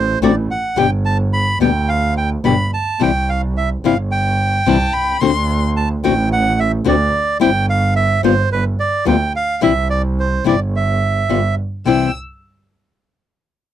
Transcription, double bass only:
0.00 0.17 A1 loud
0.21 0.44 A1 loud
0.76 1.55 G1 loud
1.59 2.40 D2 medium
2.43 2.68 G1 medium
3.00 3.79 C2 medium
3.83 4.62 G1 medium
4.66 4.89 C2 loud
4.95 5.21 C2 medium
5.21 5.99 D2 loud
6.04 6.82 A1 loud
6.86 7.08 D2 loud
7.41 8.19 G1 loud
8.23 8.46 G1 loud
8.50 8.74 G1 loud
9.07 9.30 D2 loud
9.62 10.41 C2 loud
10.46 11.26 G1 loud
11.30 11.53 G1 medium
11.85 12.09 C2 medium

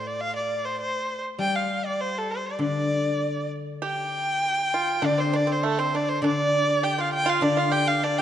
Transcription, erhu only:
0.07 0.22 D5 medium
0.21 0.36 F5 medium
0.36 0.67 D5 medium
0.65 0.80 C5 medium
0.81 1.22 C5 medium
1.40 1.57 G5 medium
1.55 1.87 F5 medium
1.86 2.03 D5 medium
2.01 2.20 C5 medium
2.19 2.33 A4 medium
2.31 2.48 C5 medium
2.47 2.61 D5 medium
2.62 3.49 D5 medium
3.86 5.07 G5 medium
5.06 5.22 D5 medium
5.20 5.37 C5 medium
5.36 5.53 D5 medium
5.52 5.61 C5 medium
5.61 5.67 C5 soft
5.66 5.81 A4 medium
5.79 5.97 C5 medium
5.96 6.10 D5 medium
6.09 6.23 C5 medium
6.24 6.85 D5 medium
6.84 7.02 G5 medium
7.00 7.13 F5 medium
7.14 7.31 G5 loud
7.30 7.45 F5 medium
7.43 7.60 D5 medium
7.59 7.74 F5 medium
7.73 7.89 G5 loud
7.88 8.05 F5 medium
8.04 8.20 D5 medium
8.19 8.22 G5 medium

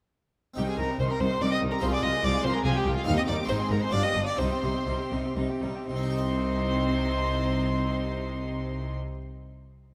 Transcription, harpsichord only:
0.54 1.76 C4 medium
0.54 1.77 D#4 medium
0.54 1.78 G4 medium
0.58 0.77 C2 medium
0.79 0.97 C2 medium
1.00 1.18 C2 medium
1.20 1.39 C2 medium
1.41 1.60 C2 medium
1.62 1.81 C2 medium
1.78 3.01 C4 medium
1.78 3.02 F4 medium
1.78 3.03 G#4 medium
1.83 2.01 C2 medium
2.04 2.22 C2 medium
2.25 2.43 C2 medium
2.46 2.64 C2 medium
2.66 2.84 C2 medium
2.87 3.05 C2 medium
3.03 3.44 C4 medium
3.03 3.45 D#4 medium
3.03 3.48 G4 medium
3.08 3.27 D#2 medium
3.28 3.47 D#2 medium
3.44 3.89 G#3 medium
3.44 3.90 C4 medium
3.44 3.91 D#4 medium
3.49 3.69 G#2 medium
3.49 3.92 G#4 medium
3.72 3.91 G#2 medium
3.89 4.35 B3 medium
3.89 4.36 F4 medium
3.89 4.37 G4 medium
3.94 4.14 G2 medium
4.17 4.37 G2 medium
4.35 5.83 C4 medium
4.35 5.84 D#4 medium
4.35 5.84 G4 medium
4.40 4.61 C3 medium
4.64 4.85 C3 medium
4.87 5.09 C3 medium
5.12 5.34 C3 medium
5.37 5.60 C3 medium
5.62 5.86 C3 medium
5.89 8.93 C3 medium
5.96 9.00 C4 medium
6.03 9.07 D#4 medium
6.10 9.14 G4 medium
6.17 9.21 D#5 medium

